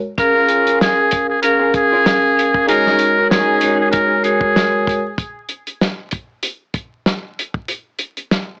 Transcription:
0.18 vibraphone C#4 G#4 A#4 F5, muted trumpet A#4, kick, closed hi-hat
0.34 string section C#4 F4 A#4
0.48 string section C#4 F4 G#4, closed hi-hat
0.67 closed hi-hat
0.81 muted trumpet G#4, snare, closed hi-hat
1.11 kick, closed hi-hat
1.30 muted trumpet G#4
1.42 vibraphone C#4 G#4 A#4 F5, muted trumpet A#4, closed hi-hat
1.59 string section C#4 F4 G#4
1.74 muted trumpet G#4, kick, closed hi-hat
1.93 string section C#4 F4 A#4
2.04 vibraphone C#4 G#4 A#4 F5, snare, closed hi-hat
2.37 vibraphone C#4 G#4 A#4 F5, closed hi-hat
2.54 kick
2.67 vibraphone G#3 F#4 A#4 C#5, string section C#4 D#4 G#4, muted trumpet A#4, closed hi-hat
2.86 snare
2.99 closed hi-hat
3.18 string section D#4 F#4 A#4
3.30 string section C#4 D#4 G#4, muted trumpet G#4, snare, closed hi-hat
3.61 vibraphone G#3 F#4 A#4 C#5, closed hi-hat
3.81 muted trumpet G#4
3.92 muted trumpet A#4, kick, closed hi-hat
4.24 vibraphone G#3 F#4 A#4 C#5, muted trumpet G#4, closed hi-hat
4.41 kick
4.56 snare, closed hi-hat
4.87 kick, closed hi-hat
5.18 kick, closed hi-hat
5.49 closed hi-hat
5.67 closed hi-hat
5.81 snare, closed hi-hat
6.11 kick, closed hi-hat
6.43 closed hi-hat
6.74 kick, closed hi-hat
7.06 snare, closed hi-hat
7.39 closed hi-hat
7.54 kick
7.68 closed hi-hat
7.99 closed hi-hat
8.17 closed hi-hat
8.31 snare, closed hi-hat

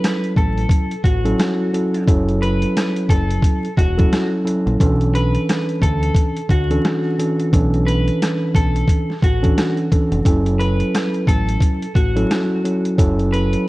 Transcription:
Already playing: tine electric piano F#3 C#4 E4 A4, clean electric guitar B4
0.04 cross-stick, snare, closed hi-hat
0.24 closed hi-hat
0.36 fingered electric bass A1, clean electric guitar A4, kick, closed hi-hat
0.58 closed hi-hat
0.70 kick, closed hi-hat
0.92 closed hi-hat
1.04 fingered electric bass A1, clean electric guitar F#4, kick, closed hi-hat
1.25 tine electric piano F#3 C#4 E4 A4, closed hi-hat
1.40 cross-stick, snare, closed hi-hat
1.73 tine electric piano F#3 C#4 E4 A4, closed hi-hat
1.94 closed hi-hat
2.07 fingered electric bass F#1, tine electric piano F#3 C#4 E4 A4, kick, closed hi-hat
2.28 closed hi-hat
2.42 clean electric guitar B4, closed hi-hat
2.62 closed hi-hat
2.77 cross-stick, snare, closed hi-hat
2.96 closed hi-hat
3.09 fingered electric bass F#1, clean electric guitar A4, kick, closed hi-hat
3.30 closed hi-hat
3.42 kick, closed hi-hat
3.64 closed hi-hat
3.77 fingered electric bass E1, clean electric guitar F#4, kick, closed hi-hat
3.97 tine electric piano F#3 C#4 E4 A4, kick, closed hi-hat
4.12 cross-stick, snare, closed hi-hat
4.44 tine electric piano F#3 C#4 E4 A4, closed hi-hat
4.66 fingered electric bass A#1, closed hi-hat
4.79 fingered electric bass B1, tine electric piano E3 C#4 D4 A4, kick, closed hi-hat
5.01 closed hi-hat
5.15 clean electric guitar B4, closed hi-hat
5.35 closed hi-hat
5.49 cross-stick, snare, closed hi-hat
5.69 closed hi-hat
5.82 fingered electric bass D2, clean electric guitar A4, kick, closed hi-hat
6.03 closed hi-hat
6.15 kick, closed hi-hat
6.37 closed hi-hat
6.50 fingered electric bass D2, clean electric guitar F#4, kick, closed hi-hat
6.71 tine electric piano E3 C#4 D4 A4, closed hi-hat
6.85 cross-stick, snare, closed hi-hat
7.18 tine electric piano E3 C#4 D4 A4, closed hi-hat
7.39 closed hi-hat
7.53 fingered electric bass B1, tine electric piano E3 C#4 D4 A4, kick, closed hi-hat
7.74 closed hi-hat
7.86 clean electric guitar B4, closed hi-hat
8.07 closed hi-hat
8.22 cross-stick, snare, closed hi-hat
8.55 fingered electric bass B1, clean electric guitar A4, kick, closed hi-hat
8.76 closed hi-hat
8.88 kick, closed hi-hat
9.10 snare
9.22 fingered electric bass A1, clean electric guitar F#4, kick, closed hi-hat
9.42 tine electric piano E3 C#4 D4 A4, kick, closed hi-hat
9.58 cross-stick, snare, closed hi-hat
9.78 closed hi-hat
9.92 tine electric piano E3 C#4 D4 A4, kick, closed hi-hat
10.12 fingered electric bass F1, closed hi-hat
10.25 fingered electric bass F#1, tine electric piano F#3 C#4 E4 A4, kick, closed hi-hat
10.46 closed hi-hat
10.60 clean electric guitar B4, closed hi-hat
10.80 closed hi-hat
10.95 cross-stick, snare, closed hi-hat
11.14 closed hi-hat
11.27 fingered electric bass A1, clean electric guitar A4, kick, closed hi-hat
11.49 closed hi-hat
11.60 kick, closed hi-hat
11.82 closed hi-hat
11.95 fingered electric bass A1, clean electric guitar F#4, kick, closed hi-hat
12.16 tine electric piano F#3 C#4 E4 A4, closed hi-hat
12.31 cross-stick, snare, closed hi-hat
12.64 tine electric piano F#3 C#4 E4 A4, closed hi-hat
12.85 closed hi-hat
12.98 fingered electric bass F#1, tine electric piano F#3 C#4 E4 A4, kick, closed hi-hat
13.19 closed hi-hat
13.32 clean electric guitar B4, closed hi-hat
13.53 closed hi-hat

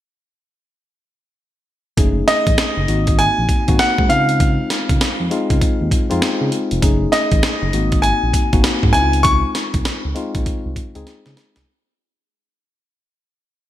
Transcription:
1.97 analog synth bass F#1, tine electric piano A3 C#4 D#4 G#4, kick, closed hi-hat
2.28 grand piano D#5, snare, closed hi-hat
2.47 analog synth bass A1, kick, closed hi-hat
2.58 snare, closed hi-hat
2.77 analog synth bass F#1
2.88 analog synth bass G#1, tine electric piano A#3 C4 D#4 F#4, closed hi-hat
3.07 kick, closed hi-hat
3.19 grand piano G#5, closed hi-hat
3.38 analog synth bass A#1
3.49 kick, closed hi-hat
3.68 analog synth bass G#1, tine electric piano A#3 C4 D#4 F#4, kick, closed hi-hat
3.79 grand piano F#5, snare, closed hi-hat
3.98 analog synth bass G#2, kick
4.09 analog synth bass C#2, tine electric piano G#3 C4 D#4 F4, grand piano F5, closed hi-hat
4.29 closed hi-hat
4.40 kick, closed hi-hat
4.70 snare, closed hi-hat
4.89 analog synth bass C#2, kick, closed hi-hat
5.01 snare, closed hi-hat
5.20 analog synth bass F2
5.31 tine electric piano G#3 C4 D#4 F4, closed hi-hat
5.50 analog synth bass C#2, kick, closed hi-hat
5.62 analog synth bass D#2, kick, closed hi-hat
5.81 analog synth bass D#2
5.91 kick, closed hi-hat
6.10 analog synth bass F2, tine electric piano G#3 C4 D#4 F4, closed hi-hat
6.22 snare, closed hi-hat
6.41 analog synth bass C#3
6.52 closed hi-hat
6.71 analog synth bass F1, closed hi-hat
6.82 analog synth bass F#1, tine electric piano A3 C#4 D#4 G#4, kick, closed hi-hat
7.12 grand piano D#5, snare, closed hi-hat
7.32 analog synth bass A1, kick, closed hi-hat
7.43 snare, closed hi-hat
7.62 analog synth bass F#1
7.73 analog synth bass G#1, tine electric piano A#3 C4 D#4 F#4, closed hi-hat
7.92 kick, closed hi-hat
8.02 grand piano G#5, closed hi-hat
8.23 analog synth bass A#1
8.34 kick, closed hi-hat
8.52 analog synth bass G#1, tine electric piano A#3 C4 D#4 F#4, kick, closed hi-hat
8.64 snare, closed hi-hat
8.83 analog synth bass G#2, kick
8.93 analog synth bass C#2, tine electric piano G#3 C4 D#4 E4, grand piano G#5, closed hi-hat
9.02 tine electric piano F4
9.13 closed hi-hat
9.23 grand piano C#6, kick, closed hi-hat
9.55 snare, closed hi-hat
9.74 analog synth bass C2, kick, closed hi-hat
9.85 snare, closed hi-hat
10.05 analog synth bass C#2
10.15 tine electric piano G#3 C4 D#4 F4, closed hi-hat
10.35 analog synth bass A#1, kick, closed hi-hat
10.46 analog synth bass C2, kick, closed hi-hat
10.66 analog synth bass C2
10.76 kick, closed hi-hat
10.95 analog synth bass C#2, tine electric piano G#3 C4 D#4 G#4, closed hi-hat
11.07 snare, closed hi-hat
11.26 analog synth bass C#3, snare
11.37 snare, closed hi-hat
11.56 analog synth bass C2, snare, closed hi-hat

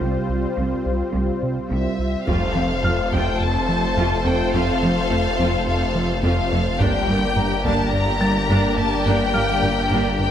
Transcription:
Already playing: analog synth pad G3 C4 F4 C5, grand piano C5 C6
0.01 analog synth bass C2, cello section C2
0.29 analog synth bass C2
0.58 analog synth bass C2, cello section C2
0.86 analog synth bass C2
1.15 analog synth bass C2, cello section C2
1.43 analog synth bass C3
1.71 analog synth bass C2, cello section C2, violin section E5
1.99 analog synth bass C2
2.27 detuned saw bass F1, analog synth bass F2, cello section F2, analog synth pad A3 C4 F4 C5, viola section A3 F4, violin section A4 C5 F5, taiko
2.55 cello section F2, analog synth bass F3, viola section A3 C4
2.84 analog synth bass F2, cello section F2, viola section A3, grand piano F6
3.12 analog synth bass F2, cello section F2, viola section A3 F4, violin section G5, taiko
3.40 analog synth bass F2, violin section A5
3.69 analog synth bass F3
3.97 analog synth bass F2, cello section F2, viola section A3 F4
4.25 analog synth bass F2, cello section F2, viola section A3 C4, grand piano A4 A5, violin section G5
4.54 cello section F2, analog synth bass F2, viola section A3 F4, violin section F5
4.82 cello section F2, analog synth bass F3, viola section A3 C4
5.10 cello section F2, analog synth bass F2, viola section A3
5.39 cello section F2, analog synth bass F2, viola section A3 F4
5.67 analog synth bass F2, violin section F5
5.95 analog synth bass F3
6.23 analog synth bass F2, cello section F2, viola section A3 F4, violin section F5
6.52 analog synth bass F2, cello section F2, viola section A3 C4
6.80 detuned saw bass G1, analog synth bass G2, cello section G2, analog synth pad G3 A#3 D4 D5, viola section A#3 D4, violin section G4 A#4 G5, taiko
7.08 cello section G2, analog synth bass G3, viola section A#3
7.36 analog synth bass G2, cello section G2, viola section G3 A#3, grand piano A#5
7.65 analog synth bass G2, cello section G2, viola section A#3 D4, violin section A5, taiko
7.93 analog synth bass G2, violin section A#5
8.21 analog synth bass G3, grand piano A6
8.49 analog synth bass G2, cello section G2, viola section A#3 D4
8.77 analog synth bass G2, cello section G2, viola section A#3, violin section A5
9.05 analog synth bass G2, cello section G2, viola section A#3 D4, violin section G5
9.34 cello section G2, analog synth bass G3, viola section A#3, grand piano F5 F6
9.62 analog synth bass G2, cello section G2, viola section G3 A#3
9.91 analog synth bass G2, cello section G2, viola section A#3 D4
10.19 analog synth bass G2, violin section G5

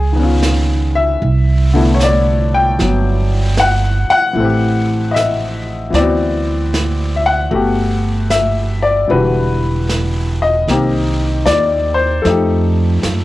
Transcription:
Already playing: upright bass C#2, upright piano G#4
0.12 upright piano D#3 B3
0.19 upright piano C#4 F4
0.42 snare, hi-hat pedal
0.95 upright piano E5
1.22 upright bass C2, brush sweep
1.73 upright piano D3 A3 B3 E4
1.95 upright piano C#5
2.00 upright piano D5, snare, hi-hat pedal
2.54 upright piano G5
2.79 upright bass G1, upright piano F#3 B3, brush sweep, snare
3.57 upright piano F#5, snare, hi-hat pedal
4.10 upright piano F#5, muted upright bass stroke
4.33 upright bass A1, upright piano E3 A3, brush sweep
4.40 upright piano C4 G4
5.11 upright piano D#5 E5
5.16 snare, hi-hat pedal
5.90 upright bass D2, upright piano E3, brush sweep, snare
5.94 upright piano B3 C4 D5
6.01 upright piano F#4
6.74 snare, hi-hat pedal
7.16 upright piano E5
7.26 upright piano F#5
7.51 upright bass G1, upright piano A3 B3 F#4, brush sweep
7.55 upright piano G4
8.30 upright piano E5, snare, hi-hat pedal
8.83 upright piano D5
9.08 upright bass E1, upright piano D3 E3 G3 B4, brush sweep
9.13 upright piano F#4
9.89 snare, hi-hat pedal
10.42 upright piano D#5
10.67 upright bass C2, upright piano D#3 A#3 C4 G4, brush sweep, snare
11.46 upright bass D#2, upright piano D5, snare, hi-hat pedal
11.94 upright piano C5
12.22 upright bass F2, upright piano F3 A3 A4, brush sweep, snare
12.27 upright piano D#4 G4
13.03 upright bass F#2, snare, hi-hat pedal

